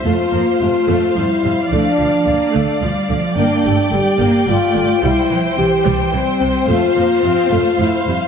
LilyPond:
<<
  \new Staff \with { instrumentName = "Violin section" } { \time 3/4 \key f \major \tempo 4 = 109 f''2.~ | f''2. | g''2.~ | g''2. |
f''2. | }
  \new Staff \with { instrumentName = "Violin section" } { \time 3/4 \key f \major c''2. | d''2.~ | d''2. | c''2.~ |
c''2. | }
  \new Staff \with { instrumentName = "French horn section" } { \time 3/4 \key f \major f'2 e'4 | d'2 r4 | d'4 g'4 f'4 | e'4 g'4 c'4 |
f'2 e'4 | }
  \new Staff \with { instrumentName = "Cello section" } { \time 3/4 \key f \major a8 bes8 a4 g4 | f4 bes8 a8 g8 f8 | bes8 a8 g8 bes8 a4 | g8 f8 e4 g4 |
a8 bes8 c'8 a8 a8 g8 | }
  \new Staff \with { instrumentName = "Viola section" } { \clef bass \time 3/4 \key f \major a8 f8 c8 a8 f8 c8 | a8 f8 d8 a8 f8 d8 | bes8 g8 d8 bes8 g8 d8 | g8 e8 c8 g8 e8 c8 |
a8 f8 c8 a8 f8 c8 | }
  \new Staff \with { instrumentName = "Double bass section" } { \clef bass \time 3/4 \key f \major f,8 f,8 f,8 f,8 f,8 f,8 | d,8 d,8 d,8 d,8 d,8 d,8 | g,,8 g,,8 g,,8 g,,8 g,,8 g,,8 | c,8 c,8 c,8 c,8 c,8 c,8 |
f,8 f,8 f,8 f,8 f,8 f,8 | }
>>